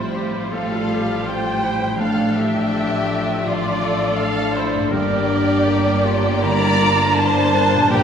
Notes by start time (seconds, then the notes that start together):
Already playing: A1 A2 F3 G3 C4 E4 F4 G4 C5
0.15 G4
0.34 C5
0.52 A2 A4 F5
0.72 F4
0.89 G4
1.08 C5
1.26 F4 G4 C5 G5
1.44 C5
1.63 E4 G4
1.81 A2 C5
1.87 A3
1.91 D4
1.96 A2 F3 A3 D4 A4 F5
2.17 D5
2.36 G4 A4 E5
2.54 D5
2.73 A4
2.91 D5
3.08 A4
3.27 D5
3.44 F3 F4 D5
3.64 D5
3.83 A4
4.01 D5
4.18 A4 F5
4.38 D5
4.55 E4 A4 C5
4.74 G2 D5
4.79 A#3
4.84 D4
4.88 G1 G2 G4 A#4 D5
4.93 A#3 D4 G4
5.11 D5
5.29 A#4
5.48 D5
5.66 G4 A#4
5.85 D5
6.05 F4 A#4
6.23 D5
6.41 D3 E4 D5 A#5
6.61 D5
6.79 F4 A#4
6.97 D5
7.15 E4 A#4 C5 A5
7.34 D5
7.54 D4 A#4
7.72 A#2 D5
7.78 A#3
7.83 D4
7.87 A#2 F3 G4 G5
7.91 A#1 A#2 F3 D4 A#4 G5